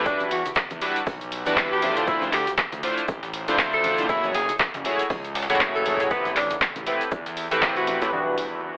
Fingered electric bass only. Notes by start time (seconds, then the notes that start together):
0.31 E2
0.71 E2
1.07 B1
1.46 E2
1.97 D2
2.33 D2
2.72 D2
3.08 A1
3.48 D2
3.98 F#1
4.34 F#1
4.74 F#1
5.10 C#2
5.50 F#1
6.00 A1
6.36 A1
6.76 A1
7.12 E2
7.51 A1
8.02 A2
8.13 E2